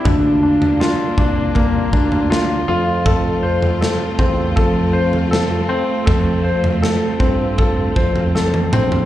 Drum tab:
SD |----o-------o---|----o-------o---|----o-------o---|
T1 |----------------|----------------|-------------o--|
T2 |----------------|----------------|--------------o-|
FT |o--o--o-o--o----|o--o--o-o--o----|o--o----o--o---o|
BD |o-----o-o-o-----|o-----o-o-------|o-----o-o-o-----|